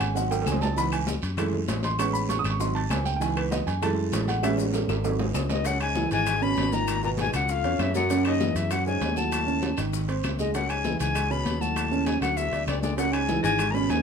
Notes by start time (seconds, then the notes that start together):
Already playing: G#3 B3 C#4
0.00 G#1 G#5, high bongo, high conga, high timbale, short guiro, claves, maracas
0.15 F#3 C4 D#4 F#5, high bongo, high conga, long guiro, maracas
0.31 G5, high bongo, high conga, high timbale, maracas
0.42 high timbale
0.46 C#2 G#5, high bongo, low bongo, high conga, short guiro, claves, maracas
0.52 low timbale
0.61 A5, high conga, low timbale, short guiro, maracas
0.76 E3 B3 D#4 B5, high bongo, high conga, long guiro, maracas
0.91 G#5, high conga, high timbale, claves, maracas
1.07 high bongo, high conga, low timbale, short guiro, maracas
1.22 F#2, high bongo, high conga, high timbale, short guiro, maracas
1.37 G#3 A3 E4, high bongo, high conga, low conga, high timbale, long guiro, claves, maracas
1.53 high bongo, high conga, low conga
1.68 A1, high bongo, low bongo, high conga, high timbale, low timbale, short guiro, maracas
1.83 C6, high bongo, high conga, high timbale, short guiro, maracas
1.98 G#3 B3 C#4 C#6, high bongo, high conga, high timbale, long guiro, claves, maracas
2.13 B5, high conga, maracas
2.29 C#6, high bongo, high conga, high timbale, low timbale, short guiro, maracas
2.39 D#6
2.44 G#1, high bongo, high conga, high timbale, short guiro, claves, maracas
2.50 C#6
2.59 F#3 C4 D#4 C6, high bongo, high conga, long guiro, maracas
2.75 A5, high bongo, high conga, high timbale
2.90 C#2 G#5, high bongo, low bongo, high conga, high timbale, low timbale, short guiro, claves, maracas
3.05 G5, high bongo, high conga, short guiro, maracas
3.16 E3 G5
3.20 B3 D#4 G#5, high bongo, high conga, long guiro, maracas
3.37 B4, high conga, high timbale, claves
3.51 D#5, high bongo, high conga, low timbale, short guiro, maracas
3.67 F#2 G#5, high bongo, high conga, high timbale, short guiro, maracas
3.82 G#3 A3 E4 A5, high bongo, high conga, low conga, high timbale, long guiro, claves, maracas
3.98 high bongo, high conga
4.12 A1, high bongo, low bongo, high conga, high timbale, low timbale, short guiro, maracas
4.28 F#5, high bongo, high conga, high timbale, short guiro, maracas
4.43 G#3 B3 C#4 E5, high bongo, high conga, high timbale, long guiro, claves, maracas
4.58 high bongo, high conga, maracas
4.73 high bongo, high conga, high timbale, short guiro, maracas
4.88 G#1, high bongo, high conga, high timbale, short guiro, claves, maracas
5.04 F#3 C4 D#4, low bongo, high conga, high timbale, long guiro, maracas
5.19 low bongo, high conga, low timbale
5.34 C#2, low bongo, high conga, low timbale, short guiro, claves, maracas
5.50 D#2 D#5, low bongo, low timbale, short guiro, maracas
5.64 F#2 C#3 C#4 F#5, high bongo, high conga, high timbale, long guiro, maracas
5.80 G#2 G#5, high bongo, high conga, high timbale, claves, maracas
5.95 E3 E4, high bongo, high conga, short guiro, maracas
6.11 G#1 G#2 G#5, high bongo, high timbale, short guiro, maracas
6.26 G#3 G#4, high bongo, high conga, high timbale, long guiro, claves, maracas
6.42 B2 C#3 C#4 B5, high bongo, high conga, maracas
6.57 G#1, high bongo, low bongo, high conga, high timbale, low timbale, short guiro, maracas
6.72 A#2 D#3 D#4 A#5, high conga, short guiro, maracas
6.88 high bongo, high conga, high timbale, long guiro, claves, maracas
7.03 A#2 B2 B3 A#5, high bongo, high conga, maracas
7.18 G#2 G#5, high bongo, high conga, high timbale, short guiro, maracas
7.34 C#2 F#2 F3 F4 F#5, high bongo, high conga, high timbale, short guiro, claves, maracas
7.49 F2 F5, high bongo, high conga, long guiro, maracas
7.64 E2 C#4 C#5, high bongo, high conga, high timbale, maracas
7.79 E2 F#2 E5, high bongo, low bongo, high conga, high timbale, low timbale, short guiro, claves, maracas
7.94 F#2 F#3 F#4 F#5, high conga, short guiro, maracas
8.09 C#3 C#4, high bongo, high conga, high timbale, long guiro, maracas
8.25 D#2 D#5, high bongo, high conga, high timbale, claves, maracas
8.40 E3 E4, high bongo, high conga, short guiro, maracas
8.55 E2 F#2 E5, high bongo, high timbale, short guiro, maracas
8.71 F#2 F#3 F#4 F#5, high bongo, high conga, high timbale, long guiro, claves, maracas
8.86 G#2 C#3 C#4 G#5, high bongo, high conga, maracas
9.01 D#2, high bongo, low bongo, high conga, high timbale, low timbale, short guiro, maracas
9.16 A2 F#3 F#4 A5, short guiro, maracas
9.32 high bongo, high timbale, long guiro, claves, maracas
9.47 C#3 C#4, high bongo, high conga, maracas
9.62 high bongo, high conga, high timbale, short guiro, maracas
9.77 G#1 D#3 D#4, high bongo, high conga, high timbale, short guiro, claves, maracas
9.93 high bongo, high conga, long guiro, maracas
10.08 C4 C5, high bongo, high conga, high timbale, maracas
10.23 C#2, high bongo, low bongo, high conga, high timbale, short guiro, claves, maracas
10.39 D#2 G#3 G#4 D#5, high conga, short guiro, maracas
10.54 F#2 C#3 C#4 F#5, high bongo, high conga, high timbale, long guiro, maracas
10.69 G#2 G#5, high bongo, high conga, high timbale, claves, maracas
10.84 E3 E4, high bongo, high conga, short guiro, maracas
10.99 C#2 G#2 G#5, high bongo, high timbale, short guiro, maracas
11.15 G#3 G#4, high bongo, high conga, high timbale, long guiro, claves, maracas
11.30 B2 C#3 C#4 B5, high bongo, high conga, maracas
11.46 D#2, high bongo, low bongo, high conga, high timbale, short guiro, maracas
11.60 A2 F#3 F#4 A5, short guiro, maracas
11.76 high bongo, high conga, high timbale, long guiro, claves, maracas
11.91 C#3 C#4, high bongo, high conga, maracas
12.06 G#2 G#5, high bongo, high conga, high timbale, short guiro, maracas
12.21 D2 F#2 F#3 F#4 F#5, high bongo, high conga, high timbale, short guiro, claves, maracas
12.36 E2 E5, high bongo, high conga, long guiro, maracas
12.52 D2 D4 D5, high bongo, high conga, high timbale, maracas
12.67 C#2 D2 D5, high bongo, low bongo, high conga, high timbale, low timbale, short guiro, claves, maracas
12.82 D2 G#3 G#4 D5, high conga, short guiro, maracas
12.96 F#2 C#3 C#4 F#5, high bongo, high conga, high timbale, long guiro, maracas
13.12 G#2 G#5, high bongo, high conga, high timbale, claves, maracas
13.29 E3 E4, high bongo, high conga, short guiro, maracas
13.43 G#1 G#2 G#5, high bongo, high timbale, short guiro, maracas
13.58 G#3 G#4, high bongo, high conga, high timbale, long guiro, claves, maracas
13.71 A#2 B2 C#3 C#4 A#5 B5, high conga
13.75 high bongo, maracas
13.89 D#2 G#2 G#5, high bongo, low bongo, high conga, high timbale, low timbale, short guiro, maracas